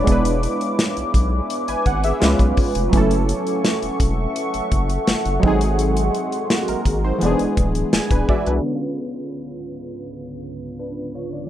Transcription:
Already playing: synth keys B4, ambient pad D6
0.04 sub bass E1, synth keys G#3 B3 D4, ambient pad B4 E5 G#5, kick, closed hi-hat
0.10 synth keys E4 B4
0.25 closed hi-hat
0.43 closed hi-hat
0.61 closed hi-hat
0.79 snare, closed hi-hat
0.97 sub bass B1, closed hi-hat
1.14 sub bass B1, kick, closed hi-hat
1.50 closed hi-hat
1.68 sub bass G#1, synth keys B4 G#5, closed hi-hat
1.86 sub bass G#1, synth keys F#5, kick, closed hi-hat
2.04 synth keys G#4 E5, closed hi-hat
2.20 sub bass C#2, synth keys G#3 B3 C#4 F4 B4, ambient pad C#6, snare, closed hi-hat
2.39 sub bass B1, kick, closed hi-hat
2.57 kick, open hi-hat
2.75 sub bass F1, closed hi-hat
2.90 sub bass F#1, synth keys F#3 A3 C#4, ambient pad A4 E5 F#5, kick, closed hi-hat
2.95 synth keys E4 A4
3.11 closed hi-hat
3.29 closed hi-hat
3.47 closed hi-hat
3.65 snare, closed hi-hat
3.82 sub bass E1, closed hi-hat
4.00 sub bass E1, kick, closed hi-hat
4.36 closed hi-hat
4.54 sub bass F#1, closed hi-hat
4.72 sub bass F#1, kick, closed hi-hat
4.90 closed hi-hat
5.07 sub bass F#1, snare, closed hi-hat
5.25 sub bass F#1, closed hi-hat
5.40 sub bass G#1, synth keys F#3 G#3 C4, ambient pad G#4 D#5 C6, kick
5.46 synth keys D#4 G#4
5.61 closed hi-hat
5.79 closed hi-hat
5.97 closed hi-hat
6.15 closed hi-hat
6.32 closed hi-hat
6.50 synth keys A#3 F#4, snare, closed hi-hat
6.68 sub bass G#1, synth keys A#4, closed hi-hat
6.85 sub bass G#1, kick, closed hi-hat
7.04 synth keys D#4 C5
7.18 sub bass E1, synth keys E3 G#3 B3, ambient pad G#4 D5 E5 B5, closed hi-hat
7.24 synth keys D4 G#4
7.39 sub bass D1, closed hi-hat
7.57 sub bass D1, kick, closed hi-hat
7.75 closed hi-hat
7.93 sub bass D1, synth keys G#5, snare, closed hi-hat
8.11 sub bass D1, synth keys D4 B4, kick, closed hi-hat
8.29 synth keys F#4 D5 E5, kick
8.46 sub bass C2, synth keys D4 B4, closed hi-hat
8.58 synth keys D3, closed hi-hat
8.64 ambient pad C#2 G#2 D3 B4 F5, synth keys B3 C#4
8.69 synth keys D4
8.75 synth keys F4
10.79 synth keys D4 B4
11.15 synth keys F4 C#5
11.33 synth keys F4 D5

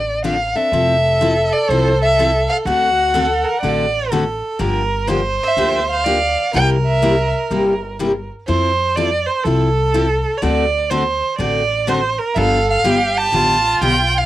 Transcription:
Already playing: upright bass A1, violin D5
0.24 steel-string acoustic guitar D3 F3 C4 D4 A4, violin F5
0.55 steel-string acoustic guitar C4 D4 A4, violin E5
0.71 upright bass F1, steel-string acoustic guitar F3 C4 E4 A4, violin A4
1.21 steel-string acoustic guitar F3 C4 E4 A4
1.53 violin D5
1.69 upright bass C2, steel-string acoustic guitar F3 C4 E4 A4, violin C5
2.02 violin E5
2.19 steel-string acoustic guitar F3 C4 E4 A4
2.49 violin F5
2.65 upright bass D2, steel-string acoustic guitar D3 A3 C4 F#4 A4, violin F#4 F#5
3.14 steel-string acoustic guitar D3 A3 C4 F#4 A4, violin A4
3.43 violin A#4
3.61 upright bass A1, steel-string acoustic guitar D3 A3 C4 F#4 A4, violin D5
4.10 steel-string acoustic guitar D3 A3 C4 F#4 A4, violin A4
4.59 upright bass G1, steel-string acoustic guitar D3 F3 A#3 D4 G4, violin A#4
5.07 steel-string acoustic guitar D3 F3 A#3 D4 G4, violin C5
5.43 violin E5
5.57 upright bass D2, steel-string acoustic guitar D3 F3 A#3 D4 G4
5.91 violin F5
6.04 steel-string acoustic guitar D3 F3 A#3 D4 G4, violin D5
6.51 upright bass C2, steel-string acoustic guitar C3 G3 A#3 E4 G4, violin A#4
6.56 violin G5
6.87 violin E5
7.02 steel-string acoustic guitar C3 G3 A#3 E4 G4
7.51 upright bass G1, steel-string acoustic guitar C3 G3 A#3 E4 G4
7.99 steel-string acoustic guitar C3 G3 A#3 E4 G4
8.47 upright bass F2, steel-string acoustic guitar F3 C4 E4 A4, violin C5
8.96 steel-string acoustic guitar F3 C4 E4 A4, violin D5
9.26 violin C5
9.43 upright bass C2, steel-string acoustic guitar F3 C4 E4 A4, violin A4
9.94 steel-string acoustic guitar F3 C4 E4 A4
10.37 violin C#5
10.42 upright bass D2, steel-string acoustic guitar D3 A3 C4 F#4 A4, violin D5
10.90 steel-string acoustic guitar D3 A3 C4 F#4 A4, violin C5
11.38 upright bass A1, steel-string acoustic guitar D3 A3 C4 F#4 A4, violin D5
11.87 steel-string acoustic guitar D3 A3 C4 F#4 A4, violin C5
12.18 violin A#4
12.34 upright bass G1, steel-string acoustic guitar D3 F3 B3 D4 G4, violin A4 E5 F5
12.70 violin F5
12.84 upright bass G1, steel-string acoustic guitar D3 F3 B3 D4 G4, violin G4
13.17 violin A5
13.32 upright bass A1, steel-string acoustic guitar D3 F3 B3 D4 G4, violin F4
13.81 upright bass B1, steel-string acoustic guitar D3 F3 B3 D4 G4, violin G5
14.18 violin F5

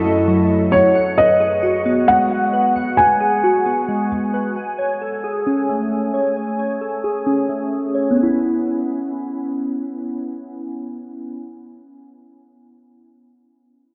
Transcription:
Already playing: ambient pad F#2 F#3 E4 A4, synth keys E4 F#4 F#5 A5, felt piano D#5
0.05 synth keys A3
0.28 synth keys F#3
0.72 felt piano C#5, synth keys F#5
0.95 synth keys F#5
1.18 synth keys B4, felt piano D#5
1.40 synth keys G#4
1.63 synth keys F#4
1.85 synth keys B3
2.08 synth keys G#3, felt piano F#5
2.53 synth keys B4
2.76 synth keys F#5
2.97 synth keys B4, felt piano G#5
3.20 synth keys G#4
3.44 synth keys F#4
3.66 synth keys B3
3.88 synth keys G#3
4.34 synth keys B4
4.56 synth keys G#5
4.78 synth keys C#5
5.01 synth keys A4
5.24 synth keys G#4
5.47 synth keys C#4
5.69 synth keys A3
6.14 synth keys C#5
6.36 synth keys G#5
6.59 synth keys C#5
6.81 synth keys A4
7.04 synth keys G#4
7.27 synth keys C#4
7.49 synth keys A3
7.95 synth keys C#5
8.11 synth keys B3
8.17 synth keys C#4
8.23 synth keys E4

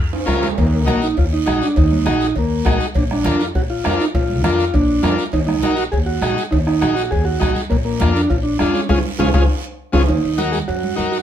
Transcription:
Already playing: upright bass F2
0.13 high timbale
0.26 upright bass C#2, transistor combo organ C#4 F4 A#4, bombo low, bombo rim, high conga, short guiro
0.33 low timbale
0.43 high conga, low timbale, short guiro
0.58 upright bass D#2, transistor combo organ A#3, bombo low, cowbell, high conga, long guiro
0.75 transistor combo organ A#3
0.86 upright bass A#1, transistor combo organ D#4 F#4 A#4, bombo rim, cowbell, high conga, short guiro
1.02 transistor combo organ D#4, short guiro
1.17 upright bass D#2, transistor combo organ F4, bombo low, cowbell, high conga, long guiro
1.33 transistor combo organ D#4
1.46 upright bass A#1, transistor combo organ D#4 F#4 G#4, bombo rim, cowbell, high conga, short guiro
1.62 transistor combo organ D4, short guiro
1.76 upright bass D#2, transistor combo organ D#4, bombo low, cowbell, high conga, long guiro
1.92 high conga
2.05 upright bass A#1, transistor combo organ D#4 F#4 G#4, bombo rim, cowbell, high conga, short guiro
2.21 low conga, short guiro
2.36 upright bass D#2, transistor combo organ A#3, bombo low, cowbell, high conga, long guiro
2.65 upright bass A#1, transistor combo organ D#4 F#4 G#4, bombo low, bombo rim, cowbell, high conga, low conga, short guiro
2.80 short guiro
2.95 upright bass A#1, transistor combo organ D4, bombo low, cowbell, high conga, long guiro
3.10 transistor combo organ D4, bombo rim, high conga
3.24 upright bass F2, transistor combo organ D4 F4 A#4, bombo rim, cowbell, high conga, short guiro
3.40 transistor combo organ F4, short guiro
3.54 upright bass A#1, transistor combo organ F#4, bombo low, cowbell, high conga, long guiro
3.70 transistor combo organ F4
3.84 upright bass F2, transistor combo organ D4 F4 A#4, bombo rim, cowbell, high conga, low timbale, short guiro
4.00 transistor combo organ D#4, short guiro
4.14 upright bass A#1, transistor combo organ F4, bombo low, cowbell, high conga, long guiro
4.30 high conga
4.44 upright bass F2, transistor combo organ D4 F4 A#4, bombo rim, cowbell, high conga, short guiro
4.59 low conga, short guiro
4.73 upright bass A#1, transistor combo organ D4, bombo low, cowbell, high conga, long guiro
5.02 upright bass F2, transistor combo organ D4 F4 A#4, bombo rim, cowbell, high conga, low conga, low timbale, short guiro
5.18 short guiro
5.32 upright bass D#2, transistor combo organ D#4, bombo low, cowbell, high conga, long guiro
5.47 transistor combo organ D#4, bombo rim, high conga
5.62 upright bass A#1, transistor combo organ D#4 F#4 A#4, bombo rim, cowbell, high conga, short guiro
5.76 transistor combo organ F#4, short guiro
5.92 upright bass D#2, transistor combo organ G#4, bombo low, cowbell, high conga, long guiro
6.06 transistor combo organ F#4
6.21 upright bass A#1, transistor combo organ D#4 F#4 G#4, bombo rim, cowbell, high conga, short guiro
6.37 short guiro
6.51 upright bass D#2, transistor combo organ D#4, bombo low, cowbell, high conga, long guiro
6.67 transistor combo organ D#4, bombo rim
6.81 upright bass A#1, transistor combo organ D#4 F#4 G#4, bombo rim, cowbell, high conga, short guiro
6.95 transistor combo organ F#4, short guiro
7.11 upright bass D#2, transistor combo organ G#4, bombo low, cowbell, high conga, long guiro
7.25 transistor combo organ F#4
7.40 upright bass A#1, transistor combo organ D#4 F#4 G#4, bombo low, bombo rim, cowbell, high conga, low conga, short guiro
7.56 high conga, short guiro
7.70 upright bass A#1, transistor combo organ A#3, bombo low, cowbell, high conga, long guiro
7.85 transistor combo organ A#3
8.00 upright bass F2, transistor combo organ D4 F4 A#4, bombo rim, cowbell, high conga, short guiro
8.15 transistor combo organ D4, short guiro
8.30 upright bass A#1, transistor combo organ F4, bombo low, cowbell, high conga, long guiro
8.43 transistor combo organ D4
8.59 upright bass F2, transistor combo organ D4 F4 G#4, bombo rim, cowbell, high conga, short guiro
8.74 transistor combo organ C#4, high conga, short guiro
8.89 upright bass C#2, transistor combo organ G#3 C#4 F4 G#4, bombo low, high conga, high timbale, long guiro
9.19 upright bass C#2, transistor combo organ G#3 C#4 F4 G#4, bombo low, high conga, high timbale, long guiro
9.34 upright bass C#2, transistor combo organ G#3 C#4 F4 G#4, bombo low, high conga, high timbale, long guiro
9.93 upright bass C#2, transistor combo organ G#3 C#4 F4 G#4, bombo low, high conga, high timbale, long guiro
10.08 upright bass D#2, transistor combo organ D#4, cowbell, high conga, long guiro
10.24 upright bass D#2
10.38 transistor combo organ D#4 F#4 A#4, cowbell, high conga, short guiro
10.52 transistor combo organ G#4, high conga, short guiro
10.68 upright bass F#2, transistor combo organ F#4, cowbell, high conga, long guiro
10.83 high conga
10.96 upright bass F#2, transistor combo organ D#4 F#4 A#4, cowbell, high conga, short guiro
11.12 transistor combo organ F#4, short guiro

